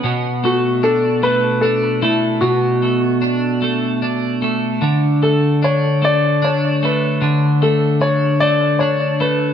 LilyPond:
<<
  \new Staff \with { instrumentName = "Grand piano" } { \time 6/8 \key b \dorian \tempo 4. = 50 r8 fis'8 a'8 b'8 a'8 e'8 | fis'2 r4 | r8 a'8 cis''8 d''8 cis''8 b'8 | r8 a'8 cis''8 d''8 cis''8 b'8 | }
  \new Staff \with { instrumentName = "Clean electric guitar" } { \time 6/8 \key b \dorian b,8 a8 d'8 a8 d'8 a8 | b,8 a8 d'8 a8 d'8 a8 | d8 a8 d'8 a8 d'8 a8 | d8 a8 d'8 a8 d'8 a8 | }
>>